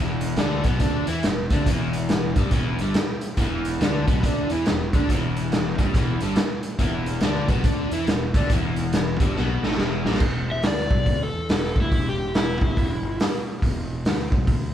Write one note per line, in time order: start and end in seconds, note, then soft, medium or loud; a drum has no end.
0.00 0.34 E1 medium
0.00 0.37 E2 loud
0.00 0.37 E3 medium
0.21 closed hi-hat medium
0.36 0.62 D2 medium
0.36 0.64 D3 loud
0.36 0.64 D4 loud
0.36 snare medium
0.36 closed hi-hat medium
0.64 0.79 B1 medium
0.64 0.79 B2 medium
0.64 0.80 B3 medium
0.64 kick medium
0.64 closed hi-hat medium
0.80 1.06 D2 medium
0.80 1.07 D3 medium
0.80 1.07 D4 medium
0.80 kick medium
0.80 closed hi-hat medium
1.07 1.22 E2 medium
1.07 1.22 E3 medium
1.07 1.23 E4 medium
1.07 closed hi-hat medium
1.23 1.49 E1 medium
1.23 1.46 E2 medium
1.23 snare loud
1.23 closed hi-hat medium
1.50 1.65 D2 medium
1.50 1.66 D3 medium
1.50 1.67 D4 medium
1.50 kick medium
1.50 closed hi-hat medium
1.66 2.32 E1 medium
1.66 2.36 E2 medium
1.66 2.37 E3 loud
1.66 kick medium
1.66 closed hi-hat medium
1.93 closed hi-hat medium
2.09 snare loud
2.09 closed hi-hat medium
2.36 2.51 G1 medium
2.36 2.52 G2 medium
2.36 2.52 G3 medium
2.36 kick loud
2.36 closed hi-hat medium
2.51 2.77 E1 medium
2.51 2.79 E2 medium
2.51 2.79 E3 loud
2.51 kick medium
2.51 closed hi-hat medium
2.78 2.93 G1 medium
2.78 2.95 G2 medium
2.78 2.95 G3 medium
2.78 closed hi-hat medium
2.94 snare loud
2.94 closed hi-hat medium
3.21 closed hi-hat medium
3.37 3.77 E1 medium
3.37 3.80 E2 medium
3.37 3.80 E3 loud
3.37 kick medium
3.37 closed hi-hat medium
3.65 closed hi-hat medium
3.80 4.05 D2 medium
3.80 4.07 D3 medium
3.80 4.07 D4 loud
3.80 snare medium
3.80 closed hi-hat medium
4.07 4.22 B1 medium
4.07 4.22 B2 medium
4.07 4.22 B3 medium
4.07 kick loud
4.07 closed hi-hat medium
4.23 4.48 D2 medium
4.23 4.49 D3 medium
4.23 4.50 D4 loud
4.23 kick medium
4.23 closed hi-hat medium
4.50 4.64 E2 medium
4.50 4.66 E3 medium
4.50 4.66 E4 medium
4.50 closed hi-hat medium
4.66 4.91 E1 medium
4.66 4.88 E2 medium
4.66 snare loud
4.66 closed hi-hat medium
4.93 5.08 D2 medium
4.93 5.09 D3 medium
4.93 5.09 D4 medium
4.93 kick loud
4.93 closed hi-hat medium
5.09 5.75 E1 medium
5.09 5.78 E2 loud
5.09 5.79 E3 loud
5.09 kick medium
5.09 closed hi-hat medium
5.37 closed hi-hat medium
5.52 snare medium
5.52 closed hi-hat medium
5.79 5.93 G1 loud
5.79 5.94 G2 medium
5.79 5.94 G3 medium
5.79 kick medium
5.79 closed hi-hat medium
5.94 6.19 E1 medium
5.94 6.21 E2 medium
5.94 6.22 E3 loud
5.94 kick loud
5.94 closed hi-hat medium
6.21 6.36 G1 medium
6.21 6.37 G2 medium
6.21 6.37 G3 medium
6.21 closed hi-hat medium
6.36 snare loud
6.36 closed hi-hat medium
6.63 closed hi-hat medium
6.79 7.19 E1 medium
6.79 7.22 E2 medium
6.79 7.22 E3 loud
6.79 kick medium
6.79 closed hi-hat medium
7.06 closed hi-hat medium
7.21 7.47 D2 loud
7.21 7.48 D3 medium
7.21 7.49 D4 loud
7.21 snare medium
7.21 closed hi-hat medium
7.48 7.63 B1 medium
7.48 7.64 B2 medium
7.48 7.65 B3 loud
7.48 kick loud
7.48 closed hi-hat medium
7.64 7.90 D2 medium
7.64 7.91 D3 medium
7.64 7.91 D4 loud
7.64 kick medium
7.64 closed hi-hat medium
7.91 8.06 E2 medium
7.91 8.07 E3 medium
7.91 8.07 E4 medium
7.91 closed hi-hat medium
8.07 8.33 E1 medium
8.07 8.30 E2 medium
8.07 snare loud
8.07 closed hi-hat medium
8.34 8.49 D2 medium
8.34 8.50 D3 medium
8.34 8.51 D4 medium
8.34 kick loud
8.34 closed hi-hat medium
8.50 9.16 E1 medium
8.50 9.20 E2 medium
8.50 9.20 E3 medium
8.50 kick loud
8.50 closed hi-hat medium
8.76 closed hi-hat medium
8.93 snare medium
8.93 closed hi-hat medium
9.20 9.35 G1 loud
9.20 9.35 G2 medium
9.20 9.35 G3 medium
9.20 kick loud
9.20 closed hi-hat medium
9.35 9.61 B1 medium
9.35 9.62 B2 medium
9.35 9.63 B3 medium
9.35 snare medium
9.62 9.77 A1 medium
9.62 9.78 A2 medium
9.62 9.79 A3 medium
9.62 snare medium
9.72 snare medium
9.77 10.03 E1 medium
9.77 10.05 E2 medium
9.77 10.05 E3 loud
9.77 snare medium
10.05 10.20 A#1 medium
10.05 10.21 A#2 medium
10.05 10.21 A#3 medium
10.05 snare medium
10.14 snare medium
10.20 10.61 E1 medium
10.20 kick loud
10.20 crash medium
10.52 10.64 E5 medium
10.63 10.89 D2 medium
10.63 snare loud
10.63 open hi-hat medium
10.67 11.21 D5 medium
10.90 11.05 B1 loud
10.90 kick loud
11.06 11.32 D2 loud
11.06 kick medium
11.06 open hi-hat soft
11.23 11.77 A4 medium
11.33 11.48 E2 medium
11.49 11.74 E1 medium
11.49 snare loud
11.49 open hi-hat medium
11.76 11.91 D2 medium
11.76 kick loud
11.81 12.07 E4 medium
11.92 12.58 E1 medium
11.92 kick medium
11.92 open hi-hat soft
12.09 12.35 G4 medium
12.34 13.19 E4 medium
12.34 snare loud
12.34 open hi-hat soft
12.61 12.76 G1 loud
12.61 kick medium
12.77 13.02 E1 medium
12.77 kick medium
12.77 open hi-hat medium
13.02 13.18 G1 medium
13.20 snare loud
13.20 open hi-hat medium
13.62 14.02 E1 medium
13.62 kick medium
13.62 open hi-hat medium
14.04 14.30 D2 medium
14.04 snare medium
14.04 open hi-hat medium
14.32 14.47 B1 medium
14.32 kick loud
14.47 14.73 D2 medium
14.47 kick loud
14.47 open hi-hat medium